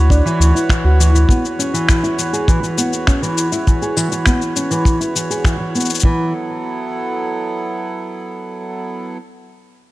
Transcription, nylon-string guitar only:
0, 0, Header, 1, 2, 480
1, 0, Start_track
1, 0, Key_signature, 3, "minor"
1, 0, Tempo, 594059
1, 1042, Time_signature, 4, 2, 24, 8
1, 8014, End_track
2, 0, Start_track
2, 0, Title_t, "Nylon-string guitar"
2, 0, Program_c, 0, 24
2, 84, Note_on_c, 0, 62, 75
2, 191, Note_off_c, 0, 62, 0
2, 205, Note_on_c, 0, 52, 97
2, 431, Note_off_c, 0, 52, 0
2, 445, Note_on_c, 0, 64, 64
2, 551, Note_off_c, 0, 64, 0
2, 564, Note_on_c, 0, 52, 66
2, 671, Note_off_c, 0, 52, 0
2, 685, Note_on_c, 0, 66, 71
2, 797, Note_off_c, 0, 66, 0
2, 804, Note_on_c, 0, 52, 91
2, 911, Note_off_c, 0, 52, 0
2, 924, Note_on_c, 0, 52, 72
2, 1031, Note_off_c, 0, 52, 0
2, 1045, Note_on_c, 0, 59, 75
2, 1157, Note_off_c, 0, 59, 0
2, 1284, Note_on_c, 0, 61, 67
2, 1391, Note_off_c, 0, 61, 0
2, 1403, Note_on_c, 0, 52, 87
2, 1631, Note_off_c, 0, 52, 0
2, 1644, Note_on_c, 0, 64, 67
2, 1751, Note_off_c, 0, 64, 0
2, 1765, Note_on_c, 0, 52, 67
2, 1871, Note_off_c, 0, 52, 0
2, 1883, Note_on_c, 0, 68, 71
2, 1996, Note_off_c, 0, 68, 0
2, 2006, Note_on_c, 0, 52, 87
2, 2112, Note_off_c, 0, 52, 0
2, 2123, Note_on_c, 0, 52, 73
2, 2230, Note_off_c, 0, 52, 0
2, 2244, Note_on_c, 0, 59, 67
2, 2357, Note_off_c, 0, 59, 0
2, 2484, Note_on_c, 0, 61, 67
2, 2591, Note_off_c, 0, 61, 0
2, 2604, Note_on_c, 0, 52, 83
2, 2831, Note_off_c, 0, 52, 0
2, 2844, Note_on_c, 0, 64, 67
2, 2951, Note_off_c, 0, 64, 0
2, 2964, Note_on_c, 0, 52, 70
2, 3071, Note_off_c, 0, 52, 0
2, 3087, Note_on_c, 0, 68, 63
2, 3198, Note_off_c, 0, 68, 0
2, 3205, Note_on_c, 0, 52, 89
2, 3311, Note_off_c, 0, 52, 0
2, 3327, Note_on_c, 0, 52, 68
2, 3432, Note_off_c, 0, 52, 0
2, 3444, Note_on_c, 0, 59, 72
2, 3557, Note_off_c, 0, 59, 0
2, 3684, Note_on_c, 0, 61, 62
2, 3791, Note_off_c, 0, 61, 0
2, 3804, Note_on_c, 0, 52, 91
2, 4031, Note_off_c, 0, 52, 0
2, 4044, Note_on_c, 0, 64, 64
2, 4151, Note_off_c, 0, 64, 0
2, 4165, Note_on_c, 0, 52, 63
2, 4271, Note_off_c, 0, 52, 0
2, 4285, Note_on_c, 0, 68, 56
2, 4397, Note_off_c, 0, 68, 0
2, 4406, Note_on_c, 0, 52, 74
2, 4512, Note_off_c, 0, 52, 0
2, 4525, Note_on_c, 0, 52, 62
2, 4631, Note_off_c, 0, 52, 0
2, 4644, Note_on_c, 0, 59, 58
2, 4757, Note_off_c, 0, 59, 0
2, 4887, Note_on_c, 0, 52, 79
2, 5108, Note_off_c, 0, 52, 0
2, 8014, End_track
0, 0, End_of_file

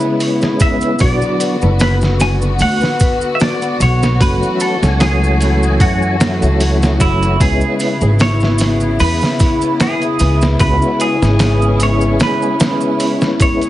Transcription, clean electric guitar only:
0, 0, Header, 1, 2, 480
1, 0, Start_track
1, 0, Tempo, 800000
1, 602, Time_signature, 4, 2, 24, 8
1, 8216, End_track
2, 0, Start_track
2, 0, Title_t, "Clean electric guitar"
2, 0, Program_c, 0, 27
2, 0, Note_on_c, 0, 71, 104
2, 341, Note_off_c, 0, 71, 0
2, 370, Note_on_c, 0, 76, 97
2, 604, Note_off_c, 0, 76, 0
2, 606, Note_on_c, 0, 74, 110
2, 1089, Note_on_c, 0, 71, 93
2, 1098, Note_off_c, 0, 74, 0
2, 1153, Note_off_c, 0, 71, 0
2, 1328, Note_on_c, 0, 80, 96
2, 1392, Note_off_c, 0, 80, 0
2, 1571, Note_on_c, 0, 78, 112
2, 2008, Note_off_c, 0, 78, 0
2, 2010, Note_on_c, 0, 76, 78
2, 2045, Note_off_c, 0, 76, 0
2, 2049, Note_on_c, 0, 74, 106
2, 2292, Note_off_c, 0, 74, 0
2, 2294, Note_on_c, 0, 73, 97
2, 2528, Note_off_c, 0, 73, 0
2, 2530, Note_on_c, 0, 71, 110
2, 2768, Note_on_c, 0, 69, 96
2, 2773, Note_off_c, 0, 71, 0
2, 3000, Note_off_c, 0, 69, 0
2, 3003, Note_on_c, 0, 68, 99
2, 3485, Note_off_c, 0, 68, 0
2, 3487, Note_on_c, 0, 66, 94
2, 4207, Note_on_c, 0, 64, 90
2, 4226, Note_off_c, 0, 66, 0
2, 4428, Note_off_c, 0, 64, 0
2, 4448, Note_on_c, 0, 68, 97
2, 4901, Note_off_c, 0, 68, 0
2, 4930, Note_on_c, 0, 73, 95
2, 5399, Note_off_c, 0, 73, 0
2, 5401, Note_on_c, 0, 71, 96
2, 5888, Note_off_c, 0, 71, 0
2, 5890, Note_on_c, 0, 68, 91
2, 6232, Note_off_c, 0, 68, 0
2, 6362, Note_on_c, 0, 71, 94
2, 6585, Note_off_c, 0, 71, 0
2, 6608, Note_on_c, 0, 68, 97
2, 7096, Note_off_c, 0, 68, 0
2, 7098, Note_on_c, 0, 73, 90
2, 7314, Note_off_c, 0, 73, 0
2, 7338, Note_on_c, 0, 71, 108
2, 8026, Note_off_c, 0, 71, 0
2, 8053, Note_on_c, 0, 73, 93
2, 8216, Note_off_c, 0, 73, 0
2, 8216, End_track
0, 0, End_of_file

